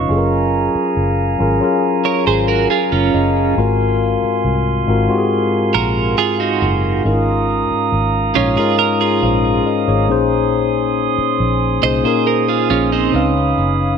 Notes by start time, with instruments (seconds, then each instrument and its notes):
Already playing: tine electric piano C#3 C#4 D#4 F4 B4, glass harmonica F5
0.08 fingered electric bass F#1, tine electric piano F#3 C#4 F4 G#4, glass harmonica G#4 G#5 A#5
0.12 tine electric piano A4
0.18 tine electric piano A#4
0.75 muted fingered electric bass stroke
0.97 fingered electric bass F#1
1.38 fingered electric bass G#1, tine electric piano F#3 C#4 F4 G#4 A#4
1.60 tine electric piano F#3 C#4 F4 G#4
1.64 tine electric piano A#4
2.05 clean electric guitar A#4 C#5
2.27 fingered electric bass G#1, clean electric guitar G#4 C5
2.48 clean electric guitar F#4 A#4
2.70 clean electric guitar F4 G#4, tine electric piano G#5
2.92 fingered electric bass F#1, clean electric guitar C#4 F4
3.14 fingered electric bass F#1, tine electric piano D#5
3.56 fingered electric bass G#1, tine electric piano G#2 G#3 C4 F4 F#4, glass harmonica A#4 C6
3.60 tine electric piano A#4
4.23 muted fingered electric bass stroke
4.45 fingered electric bass C2
4.86 fingered electric bass G#1, tine electric piano G#2 G#3 C4 F4 F#4
4.90 tine electric piano A#4
5.07 tine electric piano G#2 G#3 C4 F4 F#4
5.11 tine electric piano G4
5.18 tine electric piano G#4
5.74 fingered electric bass A#1, clean electric guitar F#4 A#4
6.18 clean electric guitar F4 G#4
6.40 clean electric guitar D#4 F#4
6.62 fingered electric bass F#1
7.03 fingered electric bass G#1, tine electric piano G#2 G#3 C#4 D#4 E4 A#4, glass harmonica C#4 A#5 D#6
7.13 tine electric piano F4
7.71 muted fingered electric bass stroke
7.92 fingered electric bass G#1
8.34 fingered electric bass A#1, tine electric piano G#2 G#3 C#4 D#4 F4 C#5, clean electric guitar C#4 F4
8.55 tine electric piano G#2 G#3 C#4 D#4 F4 A#4, clean electric guitar F4 G#4
8.79 clean electric guitar A#4
9.01 clean electric guitar F4 G#4
9.23 fingered electric bass A#1, tine electric piano C5 F5
9.66 tine electric piano A#4 D#5
9.88 fingered electric bass G#1, tine electric piano G#4 C#5
10.08 fingered electric bass A#1, tine electric piano A#2 A#3 C#4 D#4 G#4 C5, glass harmonica G#5 C6 D#6
11.18 muted fingered electric bass stroke
11.40 fingered electric bass A#1
11.81 fingered electric bass C2, tine electric piano A#2 A#3 C#4 D#4 G#4, clean electric guitar C5 D#5
11.85 tine electric piano C5
12.03 tine electric piano A#2 A#3 C#4 D#4 G#4 A#4, clean electric guitar G#4 C5
12.27 clean electric guitar A#4
12.48 clean electric guitar F4 G#4
12.70 fingered electric bass A#1, clean electric guitar C#4 F4
12.92 clean electric guitar C4 D#4
13.12 fingered electric bass C#2, tine electric piano C#3 C#4 D#4 B4, glass harmonica C#5 F5 B5
13.16 tine electric piano F5
13.58 fingered electric bass F#1